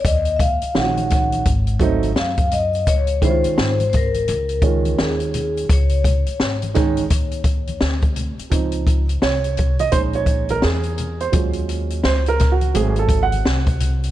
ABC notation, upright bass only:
X:1
M:4/4
L:1/16
Q:"Swing 16ths" 1/4=85
K:Db
V:1 name="Upright bass" clef=bass
E,,3 z B,,,4 A,,,4 G,,4 | D,,3 z A,,,4 D,,4 E,,4 | D,,3 z A,,,4 E,,4 =D,,3 z | D,,4 C,,4 B,,,4 _F,,4 |
E,,4 D,,4 A,,,4 C,,4 |]